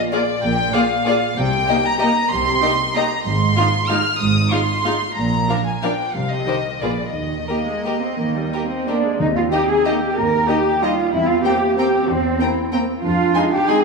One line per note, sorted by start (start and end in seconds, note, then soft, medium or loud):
0.12 0.21 A#3 soft
0.12 0.21 F4 medium
0.12 0.20 G#4 medium
0.12 0.20 D5 soft
0.12 0.43 D5 medium
0.43 0.69 A#1 medium
0.43 0.69 A#2 medium
0.43 0.75 G5 medium
0.74 0.82 A#3 soft
0.74 0.83 F4 medium
0.74 0.82 G#4 soft
0.74 0.82 D5 medium
0.74 1.37 F5 medium
1.06 1.14 A#3 soft
1.06 1.14 F4 soft
1.06 1.15 G#4 medium
1.06 1.15 D5 medium
1.37 1.63 C2 medium
1.37 1.63 C3 medium
1.37 1.85 G5 medium
1.68 1.78 A#3 soft
1.68 1.77 D#4 soft
1.68 1.76 G4 medium
1.68 1.76 D#5 medium
1.83 1.99 A#5 medium
1.99 2.10 A#3 medium
1.99 2.10 D#4 medium
1.99 2.07 G4 soft
1.99 2.08 D#5 medium
1.99 2.31 A#5 medium
2.30 2.57 C2 medium
2.30 2.57 C3 medium
2.30 2.95 C6 medium
2.62 2.71 A#3 soft
2.62 2.70 D#4 soft
2.62 2.71 G4 soft
2.62 2.70 D#5 soft
2.95 3.03 A#3 soft
2.95 3.04 D#4 soft
2.95 3.04 G4 soft
2.95 3.04 D#5 soft
2.95 3.26 A#5 medium
3.26 3.52 G#1 medium
3.26 3.52 G#2 medium
3.26 3.88 C6 medium
3.57 3.65 G#3 soft
3.57 3.66 D#4 soft
3.57 3.65 F4 soft
3.57 3.65 F5 soft
3.89 3.98 G#3 soft
3.89 3.98 D#4 soft
3.89 3.97 F4 soft
3.89 3.97 F5 soft
3.89 4.20 F6 medium
4.20 4.47 G#1 medium
4.20 4.47 G#2 medium
4.20 4.52 D#6 medium
4.51 4.60 G#3 soft
4.51 4.60 D#4 soft
4.51 4.59 F4 soft
4.51 4.59 F5 soft
4.51 5.17 C6 medium
4.85 4.94 G#3 soft
4.85 4.94 D#4 soft
4.85 4.93 F4 soft
4.85 4.93 F5 soft
5.17 5.44 A#1 medium
5.17 5.44 A#2 medium
5.17 5.65 A#5 medium
5.50 5.58 F3 soft
5.50 5.58 D4 soft
5.50 5.58 A#4 soft
5.50 5.58 F5 soft
5.66 5.83 G#5 medium
5.82 5.92 F3 soft
5.82 5.92 D4 soft
5.82 5.91 A#4 soft
5.82 5.91 F5 soft
5.82 6.14 G5 medium
6.15 6.41 C2 soft
6.15 6.41 C3 soft
6.15 6.30 F5 medium
6.30 6.81 D#5 medium
6.46 6.54 D#3 soft
6.46 6.55 D#4 soft
6.46 6.56 G4 soft
6.46 6.56 C5 soft
6.81 7.09 A#1 soft
6.81 7.09 A#2 soft
6.81 6.90 A#3 soft
6.81 6.90 F4 soft
6.81 6.91 G#4 soft
6.81 6.91 B4 soft
6.81 7.14 D5 soft
7.15 7.43 D#2 soft
7.15 7.43 D#3 soft
7.15 8.84 D#5 soft
7.49 7.66 A#3 soft
7.49 7.57 G4 soft
7.49 7.57 A#4 soft
7.67 7.85 G#3 soft
7.85 8.02 A#3 soft
7.85 7.94 G4 soft
7.85 7.95 A#4 soft
8.02 8.18 C4 soft
8.18 8.46 D#2 soft
8.18 8.46 D#3 soft
8.18 8.35 A#3 soft
8.36 8.52 G3 soft
8.52 8.70 A#3 soft
8.52 8.62 G4 soft
8.52 8.62 A#4 soft
8.70 8.87 C4 soft
8.87 9.04 A#3 soft
8.87 9.18 D4 soft
8.87 8.97 G4 soft
8.87 8.96 A#4 soft
8.87 9.18 D5 soft
9.05 9.20 G#3 soft
9.20 9.47 D#2 medium
9.20 9.66 D#3 medium
9.20 10.19 C4 medium
9.20 9.26 D#4 medium
9.20 9.37 D#5 medium
9.36 9.42 F4 medium
9.36 9.51 F5 medium
9.51 9.65 A#3 soft
9.51 9.65 D#4 soft
9.51 9.61 D#4 soft
9.51 9.69 G4 medium
9.51 9.61 D#5 soft
9.51 9.71 G5 medium
9.51 9.60 A#5 soft
9.69 9.86 G#4 medium
9.69 9.85 G#5 medium
9.85 9.99 A#3 soft
9.85 9.95 D#4 soft
9.85 9.98 D#4 soft
9.85 10.17 G4 medium
9.85 9.93 D#5 soft
9.85 10.16 G5 soft
9.85 9.95 A#5 soft
10.17 10.43 D#2 medium
10.17 10.84 A#3 soft
10.17 10.49 A#4 medium
10.17 10.51 A#5 medium
10.47 10.59 A#3 soft
10.47 10.60 D#4 soft
10.47 10.57 D#4 soft
10.47 10.82 G4 medium
10.47 10.56 D#5 soft
10.47 10.84 G5 medium
10.47 10.58 A#5 soft
10.81 11.13 G3 soft
10.81 10.93 A#3 soft
10.81 10.93 D#4 soft
10.81 10.90 D#4 soft
10.81 11.13 F4 medium
10.81 10.91 D#5 soft
10.81 11.15 F5 medium
10.81 10.90 A#5 soft
11.13 11.39 E2 medium
11.13 11.45 C4 medium
11.13 11.28 E4 medium
11.13 11.28 E5 medium
11.29 11.45 F4 medium
11.29 11.35 F5 medium
11.44 11.79 A#3 medium
11.44 11.56 A#3 soft
11.44 11.56 C4 soft
11.44 11.53 C4 soft
11.44 11.77 G4 medium
11.44 11.77 G5 medium
11.44 11.53 G5 soft
11.44 11.53 A#5 soft
11.76 11.88 A#3 soft
11.76 11.88 C4 soft
11.76 12.42 C4 medium
11.76 11.86 C4 soft
11.76 12.09 G4 medium
11.76 12.08 G5 medium
11.76 11.86 G5 soft
11.76 11.86 A#5 soft
12.09 12.35 E2 medium
12.09 12.57 C4 medium
12.09 12.56 C5 medium
12.39 12.51 A#3 soft
12.39 12.51 C4 soft
12.39 12.49 C4 soft
12.39 12.74 E4 medium
12.39 12.48 G5 soft
12.39 12.50 A#5 soft
12.72 12.84 A#3 soft
12.72 13.03 C4 medium
12.72 12.84 C4 soft
12.72 12.81 C4 soft
12.72 12.80 G5 soft
12.72 12.81 A#5 soft
13.03 13.30 F2 medium
13.03 13.66 D4 medium
13.03 13.48 F4 medium
13.03 13.53 F5 medium
13.34 13.47 G#3 soft
13.34 13.46 D#4 soft
13.34 13.44 D#4 soft
13.34 13.42 G#5 soft
13.34 13.43 C6 soft
13.52 13.68 G4 medium
13.52 13.69 G5 medium
13.67 13.79 G#3 soft
13.67 13.84 C4 medium
13.67 13.78 D#4 soft
13.67 13.76 D#4 soft
13.67 13.84 G#4 medium
13.67 13.84 G#5 medium
13.67 13.76 G#5 soft
13.67 13.75 C6 soft